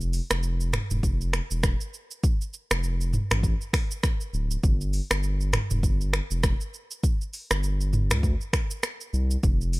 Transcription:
0.00 0.21 F1 loud
0.00 shaker soft
0.13 open hi-hat medium
0.13 shaker medium
0.31 0.78 F1 loud
0.31 finger snap medium
0.31 cross-stick loud
0.31 shaker medium
0.43 shaker medium
0.61 shaker medium
0.73 finger snap medium
0.73 cross-stick loud
0.73 mid tom medium
0.73 shaker medium
0.91 1.01 E1 medium
0.91 mid tom medium
0.91 shaker medium
1.03 1.41 F1 loud
1.03 kick medium
1.03 shaker medium
1.21 shaker soft
1.33 finger snap medium
1.33 cross-stick medium
1.33 shaker medium
1.51 1.74 E1 medium
1.51 shaker medium
1.63 finger snap medium
1.63 kick loud
1.63 cross-stick medium
1.63 shaker medium
1.81 shaker medium
1.94 shaker medium
2.11 shaker medium
2.24 kick loud
2.24 shaker medium
2.41 shaker medium
2.54 shaker medium
2.71 3.18 F1 loud
2.71 finger snap medium
2.71 cross-stick loud
2.71 shaker medium
2.83 shaker medium
3.01 shaker medium
3.13 mid tom medium
3.13 shaker medium
3.31 3.54 A1 medium
3.31 finger snap medium
3.31 cross-stick loud
3.31 mid tom medium
3.31 shaker medium
3.43 kick medium
3.43 shaker medium
3.61 shaker soft
3.73 finger snap medium
3.73 kick medium
3.73 cross-stick medium
3.73 open hi-hat medium
3.73 shaker medium
3.91 shaker medium
4.03 finger snap medium
4.03 kick loud
4.03 cross-stick medium
4.03 shaker medium
4.21 shaker medium
4.33 4.57 D1 loud
4.33 shaker medium
4.51 shaker medium
4.63 5.01 G1 loud
4.63 kick loud
4.63 shaker medium
4.81 shaker soft
4.93 open hi-hat medium
4.93 shaker medium
5.11 5.58 G1 loud
5.11 finger snap medium
5.11 cross-stick loud
5.11 shaker medium
5.23 shaker medium
5.41 shaker medium
5.53 finger snap medium
5.53 cross-stick loud
5.53 mid tom medium
5.53 shaker medium
5.71 5.85 F1 loud
5.71 mid tom medium
5.71 shaker medium
5.83 6.20 G1 loud
5.83 kick medium
5.83 shaker medium
6.01 shaker soft
6.13 finger snap medium
6.13 cross-stick medium
6.13 shaker medium
6.31 6.54 F1 loud
6.31 shaker medium
6.43 finger snap medium
6.43 kick loud
6.43 cross-stick loud
6.43 shaker medium
6.61 shaker medium
6.74 shaker medium
6.91 shaker medium
7.03 kick loud
7.03 shaker medium
7.21 shaker soft
7.33 open hi-hat medium
7.33 shaker medium
7.51 8.12 G1 loud
7.51 finger snap medium
7.51 cross-stick loud
7.51 shaker medium
7.63 shaker medium
7.81 shaker medium
7.93 mid tom medium
7.93 shaker medium
8.11 8.34 D2 medium
8.11 finger snap medium
8.11 cross-stick loud
8.11 mid tom medium
8.11 shaker medium
8.23 kick medium
8.23 shaker medium
8.41 shaker soft
8.53 finger snap medium
8.53 kick medium
8.53 cross-stick medium
8.53 shaker medium
8.71 shaker medium
8.83 finger snap medium
8.83 cross-stick medium
8.83 shaker medium
9.01 shaker medium
9.13 9.37 C2 medium
9.13 shaker medium
9.31 shaker medium
9.43 9.80 F1 loud
9.43 kick loud
9.43 shaker medium
9.61 shaker soft
9.73 open hi-hat medium
9.73 shaker medium

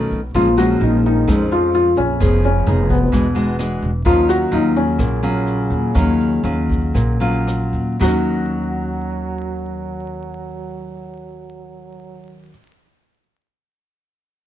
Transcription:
0.00 0.32 B2 soft
0.00 0.20 D#3 medium
0.00 0.20 A3 medium
0.00 0.20 C#4 medium
0.11 0.32 B1 medium
0.11 closed hi-hat soft
0.11 shaker soft
0.33 0.78 A#1 medium
0.33 1.25 A#2 soft
0.33 0.55 F3 medium
0.33 0.48 F3 soft
0.33 0.48 G#3 soft
0.33 0.48 C#4 medium
0.33 0.59 F4 medium
0.33 kick medium
0.33 closed hi-hat medium
0.33 shaker medium
0.57 1.23 F3 medium
0.57 0.79 F#3 medium
0.57 1.23 G#3 soft
0.57 1.24 C#4 medium
0.57 0.81 F#4 medium
0.57 cross-stick medium
0.57 closed hi-hat soft
0.57 shaker soft
0.80 1.24 A#1 medium
0.80 1.02 D#3 medium
0.80 1.03 D#4 medium
0.80 closed hi-hat soft
0.80 shaker medium
1.03 1.46 D#3 medium
1.03 1.53 D#4 medium
1.03 closed hi-hat soft
1.03 shaker soft
1.27 2.18 F2 medium
1.27 1.93 F2 medium
1.27 1.90 F3 medium
1.27 1.90 G#3 soft
1.27 1.90 C#4 medium
1.27 kick medium
1.27 cross-stick medium
1.27 closed hi-hat medium
1.27 shaker medium
1.51 1.73 F3 medium
1.51 1.73 F4 medium
1.51 closed hi-hat soft
1.51 shaker soft
1.73 1.95 F3 medium
1.73 1.98 F4 medium
1.73 closed hi-hat soft
1.73 shaker medium
1.96 2.18 A#1 medium
1.96 2.39 C#3 medium
1.96 2.43 C#4 medium
1.96 closed hi-hat soft
1.96 shaker soft
2.20 2.63 F1 loud
2.20 3.11 F3 medium
2.20 2.50 B3 soft
2.20 2.50 D#4 soft
2.20 2.50 G#4 medium
2.20 kick medium
2.20 cross-stick medium
2.20 closed hi-hat medium
2.20 shaker medium
2.43 2.87 C#3 medium
2.43 2.92 C#4 medium
2.43 closed hi-hat soft
2.43 shaker soft
2.66 3.10 F1 loud
2.66 2.97 B3 soft
2.66 2.96 D#4 soft
2.66 2.97 G#4 medium
2.66 closed hi-hat soft
2.66 shaker medium
2.90 3.79 B2 medium
2.90 3.79 B3 medium
2.90 kick medium
2.90 closed hi-hat soft
2.90 shaker soft
3.12 3.78 E1 medium
3.12 4.03 E3 medium
3.12 3.26 G#3 medium
3.12 3.26 D4 medium
3.12 3.26 F#4 medium
3.12 kick medium
3.12 cross-stick medium
3.12 closed hi-hat medium
3.12 shaker medium
3.35 3.55 G#3 medium
3.35 3.55 D4 medium
3.35 3.55 F#4 medium
3.35 closed hi-hat soft
3.35 shaker soft
3.59 3.90 G#3 medium
3.59 3.90 D4 medium
3.59 3.91 F#4 medium
3.59 cross-stick medium
3.59 closed hi-hat soft
3.59 shaker medium
3.81 4.04 E1 medium
3.81 closed hi-hat soft
3.81 shaker soft
4.05 4.49 D#2 medium
4.05 4.96 D#3 medium
4.05 4.27 F3 medium
4.05 4.48 F#3 medium
4.05 4.48 C#4 medium
4.05 4.30 F4 medium
4.05 4.48 F4 medium
4.05 kick medium
4.05 closed hi-hat soft
4.05 shaker medium
4.28 4.50 F#3 medium
4.28 4.53 F#4 medium
4.28 cross-stick medium
4.28 closed hi-hat soft
4.28 shaker soft
4.51 4.95 D#2 loud
4.51 4.74 D#3 medium
4.51 5.18 F#3 soft
4.51 5.19 C#4 medium
4.51 4.76 D#4 medium
4.51 5.19 F4 medium
4.51 closed hi-hat soft
4.51 shaker medium
4.76 7.43 C#3 medium
4.76 7.43 C#4 medium
4.76 closed hi-hat soft
4.76 shaker soft
4.99 5.67 A#1 medium
4.99 5.92 A#2 medium
4.99 kick medium
4.99 cross-stick medium
4.99 closed hi-hat medium
4.99 shaker medium
5.22 5.91 F#3 medium
5.22 5.91 C#4 medium
5.22 5.91 F4 medium
5.22 closed hi-hat soft
5.22 shaker soft
5.47 closed hi-hat soft
5.47 shaker medium
5.70 5.93 D#2 medium
5.70 closed hi-hat soft
5.70 shaker soft
5.94 6.41 D#2 medium
5.94 6.92 D#3 soft
5.94 6.40 F#3 medium
5.94 6.40 C#4 soft
5.94 6.41 F4 medium
5.94 kick medium
5.94 cross-stick medium
5.94 closed hi-hat soft
5.94 shaker medium
6.19 closed hi-hat soft
6.19 shaker soft
6.43 6.91 D#2 medium
6.43 7.16 F#3 soft
6.43 7.16 C#4 medium
6.43 7.17 F4 soft
6.43 closed hi-hat soft
6.43 shaker medium
6.69 kick medium
6.69 closed hi-hat soft
6.69 shaker soft
6.94 7.70 A#1 medium
6.94 7.98 A#2 medium
6.94 kick medium
6.94 cross-stick medium
6.94 closed hi-hat medium
6.94 shaker medium
7.20 7.96 F#3 medium
7.20 7.96 C#4 medium
7.20 7.96 F4 medium
7.20 closed hi-hat soft
7.20 shaker soft
7.47 cross-stick medium
7.47 closed hi-hat soft
7.47 shaker medium
7.73 7.98 D#2 medium
7.73 closed hi-hat soft
7.73 shaker soft
7.99 12.48 D#2 medium
7.99 12.52 D#3 medium
7.99 12.47 F#3 medium
7.99 12.53 F#3 medium
7.99 12.50 F#4 medium
7.99 snare medium
7.99 splash soft
7.99 shaker medium
8.04 12.56 C#4 medium

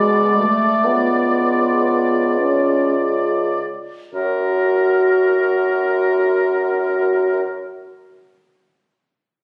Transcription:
0.00 0.44 B2 soft
0.00 0.32 G#3 medium
0.00 0.48 F#4 soft
0.00 3.62 D5 soft
0.37 0.86 A3 medium
0.84 3.62 C#2 soft
0.84 2.40 B3 medium
0.84 3.62 F4 soft
2.40 2.95 C#4 soft
4.14 7.43 F#2 soft
4.14 7.43 F#4 soft
4.14 7.44 F#4 soft
4.14 7.43 A#4 soft

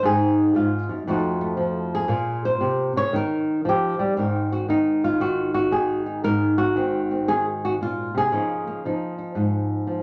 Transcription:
0.03 0.53 G#2 medium
0.03 1.06 D#3 medium
0.03 1.05 C4 medium
0.03 1.05 D#4 medium
0.03 0.55 G#4 loud
0.54 0.89 G#2 medium
0.54 0.89 F4 medium
0.89 1.06 F#2 medium
1.07 2.10 F2 medium
1.07 1.57 F3 medium
1.07 1.40 A3 medium
1.07 2.08 D#4 soft
1.07 1.94 F#4 medium
1.41 2.07 A3 medium
1.57 2.09 F3 medium
1.95 2.45 G#4 medium
2.08 2.60 A#2 medium
2.08 3.10 A#3 soft
2.08 3.11 F4 medium
2.45 2.96 C5 medium
2.61 2.95 C3 medium
2.97 3.13 C#3 medium
2.97 3.13 C#5 loud
3.13 3.64 D#3 medium
3.13 4.14 D#4 medium
3.13 3.66 A#4 medium
3.65 3.99 F3 medium
3.65 4.01 G4 medium
3.99 4.16 G3 medium
4.16 6.21 G#2 medium
4.16 4.67 D#3 soft
4.16 6.22 C4 soft
4.16 4.52 D#4 soft
4.16 5.04 A#4 soft
4.52 4.69 F#4 medium
4.69 5.19 D#3 medium
4.69 5.20 D#4 medium
5.04 5.72 F4 medium
5.20 5.70 D#3 medium
5.20 5.53 F#4 medium
5.54 6.06 F#4 medium
5.71 6.75 D#3 medium
5.71 6.23 G#4 medium
6.06 6.58 D#4 soft
6.24 8.29 G#2 medium
6.24 7.10 A#4 loud
6.58 7.62 F#4 loud
6.76 7.27 D#3 medium
6.76 7.10 C4 soft
7.11 8.29 C4 soft
7.28 7.79 D#3 medium
7.28 7.44 G#4 medium
7.65 7.74 F#4 medium
7.81 8.14 A#2 medium
7.81 8.15 F4 medium
8.14 8.31 C3 medium
8.14 10.03 G#4 medium
8.32 8.83 C#3 medium
8.32 8.85 F3 soft
8.32 8.67 A#3 soft
8.32 8.86 D#4 soft
8.67 10.03 A#3 soft
8.85 9.87 F3 medium
8.85 9.18 D#4 soft
9.18 10.03 D#4 soft
9.35 10.03 G#2 medium
9.87 10.03 F3 medium

